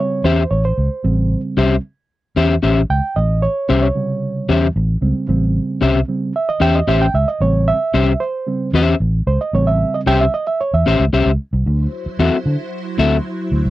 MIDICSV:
0, 0, Header, 1, 6, 480
1, 0, Start_track
1, 0, Tempo, 530973
1, 938, Time_signature, 4, 2, 24, 8
1, 12385, End_track
2, 0, Start_track
2, 0, Title_t, "Reed electric piano"
2, 0, Program_c, 0, 4
2, 0, Note_on_c, 0, 49, 51
2, 0, Note_on_c, 0, 55, 50
2, 0, Note_on_c, 0, 60, 52
2, 0, Note_on_c, 0, 73, 91
2, 192, Note_off_c, 0, 49, 0
2, 196, Note_off_c, 0, 55, 0
2, 196, Note_off_c, 0, 60, 0
2, 220, Note_on_c, 0, 72, 96
2, 225, Note_off_c, 0, 73, 0
2, 458, Note_on_c, 0, 73, 87
2, 466, Note_off_c, 0, 72, 0
2, 570, Note_off_c, 0, 73, 0
2, 587, Note_on_c, 0, 72, 89
2, 936, Note_on_c, 0, 49, 53
2, 939, Note_on_c, 0, 55, 53
2, 945, Note_on_c, 0, 60, 61
2, 1266, Note_off_c, 0, 72, 0
2, 1621, Note_off_c, 0, 49, 0
2, 1623, Note_off_c, 0, 55, 0
2, 1626, Note_off_c, 0, 60, 0
2, 2623, Note_on_c, 0, 79, 100
2, 2858, Note_on_c, 0, 75, 91
2, 2868, Note_off_c, 0, 79, 0
2, 3095, Note_on_c, 0, 73, 99
2, 3105, Note_off_c, 0, 75, 0
2, 3320, Note_off_c, 0, 73, 0
2, 3334, Note_on_c, 0, 72, 80
2, 3456, Note_on_c, 0, 73, 83
2, 3459, Note_off_c, 0, 72, 0
2, 3569, Note_on_c, 0, 49, 60
2, 3575, Note_on_c, 0, 55, 51
2, 3581, Note_on_c, 0, 48, 64
2, 4141, Note_off_c, 0, 73, 0
2, 4257, Note_off_c, 0, 49, 0
2, 4260, Note_off_c, 0, 55, 0
2, 4264, Note_off_c, 0, 48, 0
2, 4532, Note_on_c, 0, 49, 49
2, 4537, Note_on_c, 0, 55, 49
2, 4541, Note_on_c, 0, 60, 57
2, 4750, Note_off_c, 0, 49, 0
2, 4754, Note_off_c, 0, 55, 0
2, 4755, Note_off_c, 0, 60, 0
2, 4769, Note_on_c, 0, 49, 58
2, 4777, Note_on_c, 0, 55, 49
2, 4781, Note_on_c, 0, 60, 59
2, 5457, Note_off_c, 0, 49, 0
2, 5461, Note_off_c, 0, 55, 0
2, 5463, Note_off_c, 0, 60, 0
2, 5495, Note_on_c, 0, 49, 45
2, 5499, Note_on_c, 0, 55, 50
2, 5504, Note_on_c, 0, 60, 52
2, 5712, Note_off_c, 0, 49, 0
2, 5714, Note_off_c, 0, 55, 0
2, 5717, Note_off_c, 0, 60, 0
2, 5749, Note_on_c, 0, 76, 89
2, 5866, Note_off_c, 0, 76, 0
2, 5866, Note_on_c, 0, 75, 109
2, 5973, Note_off_c, 0, 75, 0
2, 5981, Note_on_c, 0, 79, 100
2, 6103, Note_off_c, 0, 79, 0
2, 6106, Note_on_c, 0, 75, 92
2, 6224, Note_on_c, 0, 76, 107
2, 6225, Note_off_c, 0, 75, 0
2, 6342, Note_on_c, 0, 79, 104
2, 6344, Note_off_c, 0, 76, 0
2, 6461, Note_on_c, 0, 76, 99
2, 6463, Note_off_c, 0, 79, 0
2, 6582, Note_off_c, 0, 76, 0
2, 6582, Note_on_c, 0, 75, 80
2, 6696, Note_on_c, 0, 49, 53
2, 6701, Note_on_c, 0, 55, 51
2, 6703, Note_off_c, 0, 75, 0
2, 6704, Note_on_c, 0, 60, 60
2, 6704, Note_on_c, 0, 73, 93
2, 6942, Note_on_c, 0, 76, 118
2, 6947, Note_off_c, 0, 73, 0
2, 7015, Note_off_c, 0, 49, 0
2, 7018, Note_off_c, 0, 55, 0
2, 7020, Note_off_c, 0, 60, 0
2, 7415, Note_on_c, 0, 72, 83
2, 7433, Note_off_c, 0, 76, 0
2, 7654, Note_on_c, 0, 49, 47
2, 7658, Note_on_c, 0, 55, 44
2, 7662, Note_on_c, 0, 60, 58
2, 7862, Note_off_c, 0, 72, 0
2, 7871, Note_off_c, 0, 49, 0
2, 7873, Note_off_c, 0, 55, 0
2, 7875, Note_off_c, 0, 60, 0
2, 8383, Note_on_c, 0, 72, 89
2, 8503, Note_off_c, 0, 72, 0
2, 8506, Note_on_c, 0, 75, 79
2, 8617, Note_on_c, 0, 49, 56
2, 8623, Note_on_c, 0, 55, 52
2, 8625, Note_off_c, 0, 75, 0
2, 8629, Note_on_c, 0, 60, 61
2, 8629, Note_on_c, 0, 73, 92
2, 8743, Note_on_c, 0, 76, 94
2, 8746, Note_off_c, 0, 73, 0
2, 8986, Note_off_c, 0, 76, 0
2, 8988, Note_on_c, 0, 75, 89
2, 9040, Note_off_c, 0, 75, 0
2, 9106, Note_on_c, 0, 79, 111
2, 9213, Note_off_c, 0, 79, 0
2, 9228, Note_on_c, 0, 76, 106
2, 9300, Note_off_c, 0, 49, 0
2, 9303, Note_off_c, 0, 55, 0
2, 9306, Note_off_c, 0, 60, 0
2, 9345, Note_off_c, 0, 76, 0
2, 9347, Note_on_c, 0, 75, 98
2, 9453, Note_off_c, 0, 75, 0
2, 9466, Note_on_c, 0, 76, 89
2, 9584, Note_off_c, 0, 76, 0
2, 9588, Note_on_c, 0, 73, 90
2, 9705, Note_off_c, 0, 73, 0
2, 9709, Note_on_c, 0, 76, 92
2, 9926, Note_off_c, 0, 76, 0
2, 12385, End_track
3, 0, Start_track
3, 0, Title_t, "Clean electric guitar"
3, 0, Program_c, 1, 27
3, 223, Note_on_c, 1, 61, 82
3, 227, Note_on_c, 1, 67, 91
3, 232, Note_on_c, 1, 72, 83
3, 235, Note_on_c, 1, 76, 100
3, 377, Note_off_c, 1, 61, 0
3, 380, Note_off_c, 1, 67, 0
3, 382, Note_off_c, 1, 72, 0
3, 383, Note_off_c, 1, 76, 0
3, 1420, Note_on_c, 1, 61, 83
3, 1426, Note_on_c, 1, 67, 90
3, 1431, Note_on_c, 1, 72, 96
3, 1434, Note_on_c, 1, 76, 83
3, 1576, Note_off_c, 1, 61, 0
3, 1579, Note_off_c, 1, 67, 0
3, 1582, Note_off_c, 1, 72, 0
3, 1583, Note_off_c, 1, 76, 0
3, 2136, Note_on_c, 1, 61, 86
3, 2140, Note_on_c, 1, 67, 94
3, 2142, Note_on_c, 1, 72, 88
3, 2146, Note_on_c, 1, 76, 96
3, 2294, Note_off_c, 1, 61, 0
3, 2296, Note_off_c, 1, 67, 0
3, 2297, Note_off_c, 1, 72, 0
3, 2299, Note_off_c, 1, 76, 0
3, 2373, Note_on_c, 1, 61, 88
3, 2374, Note_on_c, 1, 67, 75
3, 2380, Note_on_c, 1, 72, 80
3, 2381, Note_on_c, 1, 76, 83
3, 2532, Note_off_c, 1, 61, 0
3, 2533, Note_off_c, 1, 67, 0
3, 2536, Note_off_c, 1, 72, 0
3, 2537, Note_off_c, 1, 76, 0
3, 3335, Note_on_c, 1, 61, 80
3, 3338, Note_on_c, 1, 67, 76
3, 3342, Note_on_c, 1, 72, 81
3, 3343, Note_on_c, 1, 76, 83
3, 3493, Note_off_c, 1, 61, 0
3, 3495, Note_off_c, 1, 67, 0
3, 3497, Note_off_c, 1, 72, 0
3, 3497, Note_off_c, 1, 76, 0
3, 4058, Note_on_c, 1, 61, 90
3, 4058, Note_on_c, 1, 67, 96
3, 4063, Note_on_c, 1, 72, 95
3, 4069, Note_on_c, 1, 76, 92
3, 4215, Note_off_c, 1, 61, 0
3, 4215, Note_off_c, 1, 67, 0
3, 4217, Note_off_c, 1, 72, 0
3, 4220, Note_off_c, 1, 76, 0
3, 5253, Note_on_c, 1, 61, 79
3, 5257, Note_on_c, 1, 67, 90
3, 5264, Note_on_c, 1, 72, 89
3, 5265, Note_on_c, 1, 76, 90
3, 5412, Note_off_c, 1, 61, 0
3, 5414, Note_off_c, 1, 67, 0
3, 5417, Note_off_c, 1, 72, 0
3, 5418, Note_off_c, 1, 76, 0
3, 5967, Note_on_c, 1, 61, 90
3, 5976, Note_on_c, 1, 67, 84
3, 5979, Note_on_c, 1, 72, 92
3, 5979, Note_on_c, 1, 76, 101
3, 6129, Note_off_c, 1, 61, 0
3, 6134, Note_off_c, 1, 67, 0
3, 6135, Note_off_c, 1, 72, 0
3, 6135, Note_off_c, 1, 76, 0
3, 6216, Note_on_c, 1, 61, 85
3, 6216, Note_on_c, 1, 67, 87
3, 6222, Note_on_c, 1, 72, 91
3, 6226, Note_on_c, 1, 76, 88
3, 6373, Note_off_c, 1, 61, 0
3, 6373, Note_off_c, 1, 67, 0
3, 6377, Note_off_c, 1, 72, 0
3, 6378, Note_off_c, 1, 76, 0
3, 7175, Note_on_c, 1, 61, 74
3, 7178, Note_on_c, 1, 67, 77
3, 7182, Note_on_c, 1, 72, 81
3, 7186, Note_on_c, 1, 76, 84
3, 7333, Note_off_c, 1, 61, 0
3, 7334, Note_off_c, 1, 67, 0
3, 7336, Note_off_c, 1, 72, 0
3, 7338, Note_off_c, 1, 76, 0
3, 7900, Note_on_c, 1, 61, 86
3, 7904, Note_on_c, 1, 67, 96
3, 7910, Note_on_c, 1, 72, 96
3, 7913, Note_on_c, 1, 76, 105
3, 8079, Note_off_c, 1, 61, 0
3, 8081, Note_off_c, 1, 67, 0
3, 8084, Note_off_c, 1, 72, 0
3, 8086, Note_off_c, 1, 76, 0
3, 9099, Note_on_c, 1, 61, 92
3, 9105, Note_on_c, 1, 67, 102
3, 9107, Note_on_c, 1, 76, 100
3, 9108, Note_on_c, 1, 72, 93
3, 9254, Note_off_c, 1, 61, 0
3, 9257, Note_off_c, 1, 67, 0
3, 9258, Note_off_c, 1, 76, 0
3, 9259, Note_off_c, 1, 72, 0
3, 9818, Note_on_c, 1, 61, 88
3, 9823, Note_on_c, 1, 67, 76
3, 9827, Note_on_c, 1, 72, 85
3, 9833, Note_on_c, 1, 76, 91
3, 9974, Note_off_c, 1, 61, 0
3, 9976, Note_off_c, 1, 67, 0
3, 9978, Note_off_c, 1, 72, 0
3, 9981, Note_off_c, 1, 76, 0
3, 10061, Note_on_c, 1, 61, 83
3, 10064, Note_on_c, 1, 67, 90
3, 10065, Note_on_c, 1, 72, 77
3, 10070, Note_on_c, 1, 76, 92
3, 10215, Note_off_c, 1, 61, 0
3, 10216, Note_off_c, 1, 67, 0
3, 10217, Note_off_c, 1, 72, 0
3, 10219, Note_off_c, 1, 76, 0
3, 11023, Note_on_c, 1, 60, 85
3, 11025, Note_on_c, 1, 66, 92
3, 11028, Note_on_c, 1, 69, 89
3, 11029, Note_on_c, 1, 76, 100
3, 11176, Note_off_c, 1, 60, 0
3, 11177, Note_off_c, 1, 66, 0
3, 11178, Note_off_c, 1, 69, 0
3, 11179, Note_off_c, 1, 76, 0
3, 11736, Note_on_c, 1, 60, 79
3, 11745, Note_on_c, 1, 66, 79
3, 11745, Note_on_c, 1, 69, 90
3, 11746, Note_on_c, 1, 76, 105
3, 11892, Note_off_c, 1, 60, 0
3, 11896, Note_off_c, 1, 66, 0
3, 11896, Note_off_c, 1, 69, 0
3, 11897, Note_off_c, 1, 76, 0
3, 12385, End_track
4, 0, Start_track
4, 0, Title_t, "String machine"
4, 0, Program_c, 2, 50
4, 10534, Note_on_c, 2, 54, 70
4, 10539, Note_on_c, 2, 72, 76
4, 10540, Note_on_c, 2, 64, 65
4, 12385, Note_off_c, 2, 54, 0
4, 12385, Note_off_c, 2, 64, 0
4, 12385, Note_off_c, 2, 72, 0
4, 12385, End_track
5, 0, Start_track
5, 0, Title_t, "Fingered electric bass"
5, 0, Program_c, 3, 33
5, 218, Note_on_c, 3, 40, 80
5, 396, Note_off_c, 3, 40, 0
5, 460, Note_on_c, 3, 33, 99
5, 637, Note_off_c, 3, 33, 0
5, 702, Note_on_c, 3, 37, 95
5, 789, Note_off_c, 3, 37, 0
5, 943, Note_on_c, 3, 33, 104
5, 1208, Note_off_c, 3, 33, 0
5, 1421, Note_on_c, 3, 36, 84
5, 1598, Note_off_c, 3, 36, 0
5, 2139, Note_on_c, 3, 40, 92
5, 2316, Note_off_c, 3, 40, 0
5, 2378, Note_on_c, 3, 33, 93
5, 2555, Note_off_c, 3, 33, 0
5, 2620, Note_on_c, 3, 37, 86
5, 2708, Note_off_c, 3, 37, 0
5, 2861, Note_on_c, 3, 33, 102
5, 3126, Note_off_c, 3, 33, 0
5, 3342, Note_on_c, 3, 36, 86
5, 3518, Note_off_c, 3, 36, 0
5, 4061, Note_on_c, 3, 40, 80
5, 4237, Note_off_c, 3, 40, 0
5, 4302, Note_on_c, 3, 33, 102
5, 4478, Note_off_c, 3, 33, 0
5, 4536, Note_on_c, 3, 37, 86
5, 4625, Note_off_c, 3, 37, 0
5, 4781, Note_on_c, 3, 33, 112
5, 5046, Note_off_c, 3, 33, 0
5, 5258, Note_on_c, 3, 36, 95
5, 5436, Note_off_c, 3, 36, 0
5, 5974, Note_on_c, 3, 40, 86
5, 6153, Note_off_c, 3, 40, 0
5, 6213, Note_on_c, 3, 33, 98
5, 6392, Note_off_c, 3, 33, 0
5, 6454, Note_on_c, 3, 37, 97
5, 6544, Note_off_c, 3, 37, 0
5, 6694, Note_on_c, 3, 33, 107
5, 6962, Note_off_c, 3, 33, 0
5, 7179, Note_on_c, 3, 36, 93
5, 7356, Note_off_c, 3, 36, 0
5, 7896, Note_on_c, 3, 40, 100
5, 8074, Note_off_c, 3, 40, 0
5, 8138, Note_on_c, 3, 33, 90
5, 8315, Note_off_c, 3, 33, 0
5, 8378, Note_on_c, 3, 37, 100
5, 8466, Note_off_c, 3, 37, 0
5, 8618, Note_on_c, 3, 33, 101
5, 8883, Note_off_c, 3, 33, 0
5, 9101, Note_on_c, 3, 36, 102
5, 9276, Note_off_c, 3, 36, 0
5, 9705, Note_on_c, 3, 40, 86
5, 9790, Note_off_c, 3, 40, 0
5, 9822, Note_on_c, 3, 33, 91
5, 9908, Note_off_c, 3, 33, 0
5, 9941, Note_on_c, 3, 37, 100
5, 10027, Note_off_c, 3, 37, 0
5, 10062, Note_on_c, 3, 36, 106
5, 10148, Note_off_c, 3, 36, 0
5, 10178, Note_on_c, 3, 37, 89
5, 10266, Note_off_c, 3, 37, 0
5, 10421, Note_on_c, 3, 36, 94
5, 10508, Note_off_c, 3, 36, 0
5, 10543, Note_on_c, 3, 38, 103
5, 10718, Note_off_c, 3, 38, 0
5, 11020, Note_on_c, 3, 40, 96
5, 11107, Note_off_c, 3, 40, 0
5, 11261, Note_on_c, 3, 50, 100
5, 11347, Note_off_c, 3, 50, 0
5, 11740, Note_on_c, 3, 38, 94
5, 11915, Note_off_c, 3, 38, 0
5, 12219, Note_on_c, 3, 38, 81
5, 12306, Note_off_c, 3, 38, 0
5, 12343, Note_on_c, 3, 36, 88
5, 12385, Note_off_c, 3, 36, 0
5, 12385, End_track
6, 0, Start_track
6, 0, Title_t, "Muted fingered electric bass strokes"
6, 10903, Note_on_c, 9, 29, 46
6, 10993, Note_off_c, 9, 29, 0
6, 12385, End_track
0, 0, End_of_file